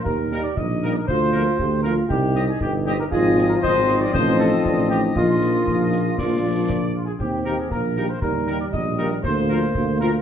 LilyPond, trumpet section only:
\new Staff \with { instrumentName = "Trumpet section" } { \time 2/4 \key ees \major \tempo 4 = 118 bes'8. d''16 ees''8. bes'16 | c''4. bes'8 | g'8. aes'16 g'8 g'16 bes'16 | aes'8. bes'16 c''8. d''16 |
c''8 a'4 g'8 | f'2~ | f'4 r8 f'16 aes'16 | g'8. aes'16 bes'8. c''16 |
bes'8. d''16 ees''8. bes'16 | c''4. bes'8 | }